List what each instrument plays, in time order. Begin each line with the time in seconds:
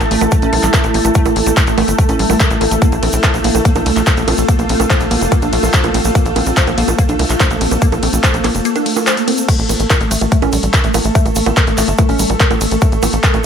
Already playing: synth drone A3 A4, ambient pad E4 A4 A5
0.00 analog synth bass A1, synth arpeggio sound A3, closed hi-hat, high bongo, shaker
0.11 analog synth bass A1, synth arpeggio sound A3, open hi-hat
0.21 analog synth bass A1, synth arpeggio sound A3, high bongo, shaker
0.31 synth arpeggio sound A3, kick, closed hi-hat, shaker
0.42 analog synth bass A1, synth arpeggio sound C#4, closed hi-hat, shaker
0.53 analog synth bass A#1, synth arpeggio sound G3, open hi-hat, high bongo
0.63 analog synth bass A1, synth arpeggio sound G3, clap, closed hi-hat, shaker
0.74 synth arpeggio sound A#4, kick, clap, closed hi-hat, high bongo, shaker
0.84 analog synth bass A1, synth arpeggio sound A3, closed hi-hat, shaker
0.94 analog synth bass A1, synth arpeggio sound A#3, open hi-hat
1.05 analog synth bass A1, synth arpeggio sound A3, closed hi-hat, high bongo, shaker
1.14 synth arpeggio sound A3, kick, closed hi-hat, shaker
1.25 analog synth bass A1, synth arpeggio sound A3, closed hi-hat, high bongo, shaker
1.36 analog synth bass A1, synth arpeggio sound A#3, open hi-hat
1.46 analog synth bass A1, synth arpeggio sound A#3, closed hi-hat, shaker
1.57 synth arpeggio sound A#4, kick, clap, closed hi-hat, high bongo, shaker
1.67 analog synth bass A1, synth arpeggio sound A3, closed hi-hat, shaker
1.78 analog synth bass A1, synth arpeggio sound A3, open hi-hat, high bongo
1.88 analog synth bass G1, synth arpeggio sound A3, closed hi-hat, shaker
1.99 synth arpeggio sound A3, kick, closed hi-hat, shaker
2.09 analog synth bass A1, synth arpeggio sound C#4, closed hi-hat, high bongo, shaker
2.19 analog synth bass A1, synth arpeggio sound G3, open hi-hat
2.30 analog synth bass A1, synth arpeggio sound G3, open hi-hat, high bongo, shaker
2.40 synth arpeggio sound A#4, kick, clap, closed hi-hat, shaker
2.51 analog synth bass A1, synth arpeggio sound A3, closed hi-hat, shaker
2.61 analog synth bass A1, synth arpeggio sound A#3, open hi-hat, high bongo
2.71 analog synth bass A1, synth arpeggio sound A3, closed hi-hat, shaker
2.82 synth arpeggio sound A#3, ambient pad F4, kick, closed hi-hat, shaker
2.92 analog synth bass A#1, synth arpeggio sound A#3, closed hi-hat, shaker
3.03 analog synth bass A#1, synth arpeggio sound C4, open hi-hat, ride, high bongo
3.12 analog synth bass A#1, synth arpeggio sound C4, closed hi-hat, shaker
3.23 synth arpeggio sound C5, kick, clap, closed hi-hat, high bongo, shaker
3.34 analog synth bass A#1, synth arpeggio sound A#3, closed hi-hat, shaker
3.44 analog synth bass A#1, synth arpeggio sound A#3, open hi-hat, ride
3.55 analog synth bass A#1, synth arpeggio sound A#3, closed hi-hat, high bongo, shaker
3.65 synth arpeggio sound A#3, kick, closed hi-hat, shaker
3.75 analog synth bass A#1, synth arpeggio sound D4, closed hi-hat, high bongo, shaker
3.86 analog synth bass C2, synth arpeggio sound A3, open hi-hat, ride
3.96 analog synth bass A#1, synth arpeggio sound A3, clap, closed hi-hat, shaker
4.06 synth arpeggio sound C5, kick, clap, closed hi-hat, high bongo, shaker
4.17 analog synth bass A#1, synth arpeggio sound A#3, closed hi-hat, shaker
4.28 analog synth bass A#1, synth arpeggio sound C4, open hi-hat, ride, high bongo
4.38 analog synth bass A#1, synth arpeggio sound A#3, closed hi-hat, shaker
4.48 synth arpeggio sound A#3, kick, closed hi-hat, shaker
4.59 analog synth bass A#1, synth arpeggio sound A#3, closed hi-hat, high bongo, shaker
4.69 analog synth bass A#1, synth arpeggio sound C4, open hi-hat, ride
4.80 analog synth bass A#1, synth arpeggio sound C4, closed hi-hat, high bongo, shaker
4.90 synth arpeggio sound C5, kick, clap, closed hi-hat, shaker
5.00 analog synth bass A#1, synth arpeggio sound A#3, closed hi-hat, shaker
5.11 analog synth bass A#1, synth arpeggio sound A#3, open hi-hat, ride, high bongo
5.21 analog synth bass F1, synth arpeggio sound A#3, closed hi-hat, shaker
5.32 synth arpeggio sound A#3, kick, closed hi-hat, high bongo, shaker
5.42 analog synth bass A#1, synth arpeggio sound D4, closed hi-hat, shaker
5.53 analog synth bass A#1, synth arpeggio sound A3, open hi-hat, ride
5.63 analog synth bass A#1, synth arpeggio sound A3, open hi-hat, high bongo, shaker
5.73 synth arpeggio sound C5, kick, clap, closed hi-hat, shaker
5.84 analog synth bass A#1, synth arpeggio sound A#3, closed hi-hat, high bongo, shaker
5.94 analog synth bass A#1, synth arpeggio sound C4, open hi-hat, ride
6.04 analog synth bass A#1, synth arpeggio sound A#3, closed hi-hat, shaker
6.15 synth arpeggio sound A#3, kick, closed hi-hat, high bongo, shaker
6.25 analog synth bass A#1, synth arpeggio sound A#3, closed hi-hat, shaker
6.36 analog synth bass A#1, synth arpeggio sound C4, open hi-hat, ride, high bongo
6.46 analog synth bass A#1, synth arpeggio sound C4, closed hi-hat, shaker
6.57 synth arpeggio sound C5, kick, clap, closed hi-hat, shaker
6.67 analog synth bass A#1, synth arpeggio sound A#3, closed hi-hat, high bongo, shaker
6.78 analog synth bass A#1, synth arpeggio sound A#3, open hi-hat, ride
6.88 analog synth bass A#1, synth arpeggio sound A#3, closed hi-hat, high bongo, shaker
6.99 synth arpeggio sound A#3, kick, closed hi-hat, shaker
7.09 analog synth bass A#1, synth arpeggio sound D4, closed hi-hat, shaker
7.19 analog synth bass C2, synth arpeggio sound A3, open hi-hat, ride, high bongo
7.29 analog synth bass A#1, synth arpeggio sound A3, clap, closed hi-hat, shaker
7.40 synth arpeggio sound C5, kick, clap, closed hi-hat, high bongo, shaker
7.51 analog synth bass A#1, synth arpeggio sound A#3, closed hi-hat, shaker
7.61 analog synth bass A#1, synth arpeggio sound C4, open hi-hat, ride
7.71 analog synth bass A#1, synth arpeggio sound A#3, closed hi-hat, high bongo, shaker
7.82 synth arpeggio sound A#3, kick, closed hi-hat, shaker
7.92 analog synth bass A#1, synth arpeggio sound A#3, closed hi-hat, high bongo, shaker
8.03 analog synth bass A#1, synth arpeggio sound C4, open hi-hat, ride
8.13 analog synth bass A#1, synth arpeggio sound C4, closed hi-hat, shaker
8.24 synth arpeggio sound C5, kick, clap, closed hi-hat, high bongo, shaker
8.34 analog synth bass A#1, synth arpeggio sound A#3, closed hi-hat, shaker
8.44 analog synth bass A#1, synth arpeggio sound A#3, clap, open hi-hat, ride, high bongo
8.55 analog synth bass F1, synth arpeggio sound A#3, closed hi-hat, shaker
8.65 synth arpeggio sound A#3, closed hi-hat, shaker
8.76 synth arpeggio sound D4, closed hi-hat, high bongo, shaker
8.86 synth arpeggio sound A3, open hi-hat, ride
8.96 synth arpeggio sound A3, open hi-hat, high bongo, shaker
9.07 synth arpeggio sound C5, clap, closed hi-hat, shaker
9.17 synth arpeggio sound A#3, closed hi-hat, shaker
9.28 synth arpeggio sound C4, open hi-hat, ride, high bongo
9.37 synth arpeggio sound A#3, closed hi-hat, shaker
9.49 synth arpeggio sound A3, synth drone A3 A4, kick, closed hi-hat, crash, shaker
9.59 analog synth bass A1, synth arpeggio sound A3, closed hi-hat
9.69 analog synth bass A1, synth arpeggio sound A#3, open hi-hat, ride, high bongo, shaker
9.79 analog synth bass A1, synth arpeggio sound A#3, closed hi-hat, shaker
9.90 synth arpeggio sound A#4, kick, clap, closed hi-hat, high bongo, shaker
10.01 analog synth bass A1, synth arpeggio sound A3, closed hi-hat, shaker
10.11 analog synth bass A1, synth arpeggio sound A3, open hi-hat, ride, shaker
10.21 analog synth bass A1, synth arpeggio sound A3, closed hi-hat, high bongo, shaker
10.32 synth arpeggio sound A3, kick, closed hi-hat, shaker
10.42 analog synth bass A1, synth arpeggio sound C#4, closed hi-hat, high bongo, shaker
10.52 analog synth bass A#1, synth arpeggio sound G3, open hi-hat, ride, shaker
10.63 analog synth bass A1, synth arpeggio sound G3, closed hi-hat, shaker
10.74 synth arpeggio sound A#4, kick, clap, closed hi-hat, high bongo, shaker
10.84 analog synth bass A1, synth arpeggio sound A3, closed hi-hat, shaker
10.94 analog synth bass A1, synth arpeggio sound A#3, open hi-hat, ride, high bongo, shaker
11.05 analog synth bass A1, synth arpeggio sound A3, closed hi-hat, shaker
11.15 synth arpeggio sound A3, kick, closed hi-hat, shaker
11.26 analog synth bass A1, synth arpeggio sound A3, closed hi-hat, high bongo, shaker
11.35 analog synth bass A1, synth arpeggio sound A#3, open hi-hat, ride, shaker
11.46 analog synth bass A1, synth arpeggio sound A#3, closed hi-hat, high bongo, shaker
11.57 synth arpeggio sound A#4, kick, clap, closed hi-hat, shaker
11.67 analog synth bass A1, synth arpeggio sound A3, closed hi-hat, shaker
11.78 analog synth bass A1, synth arpeggio sound A3, clap, open hi-hat, ride, high bongo, shaker
11.88 analog synth bass G1, synth arpeggio sound A3, closed hi-hat, shaker
11.98 synth arpeggio sound A3, kick, closed hi-hat, high bongo, shaker
12.09 analog synth bass A1, synth arpeggio sound C#4, open hi-hat, shaker
12.19 analog synth bass A1, synth arpeggio sound G3, open hi-hat, ride, shaker
12.30 analog synth bass A1, synth arpeggio sound G3, closed hi-hat, high bongo, shaker
12.40 synth arpeggio sound A#4, kick, clap, closed hi-hat, shaker
12.51 analog synth bass A1, synth arpeggio sound A3, closed hi-hat, high bongo, shaker
12.61 analog synth bass A1, synth arpeggio sound A#3, open hi-hat, ride, shaker
12.71 analog synth bass A1, synth arpeggio sound A3, closed hi-hat, shaker
12.82 synth arpeggio sound A3, kick, closed hi-hat, high bongo, shaker
12.92 analog synth bass A1, synth arpeggio sound A3, closed hi-hat, shaker
13.02 analog synth bass A1, synth arpeggio sound A#3, open hi-hat, ride, high bongo, shaker
13.13 analog synth bass A1, synth arpeggio sound A#3, closed hi-hat, shaker
13.23 synth arpeggio sound A#4, kick, clap, closed hi-hat, shaker
13.34 analog synth bass A1, synth arpeggio sound A3, closed hi-hat, high bongo, shaker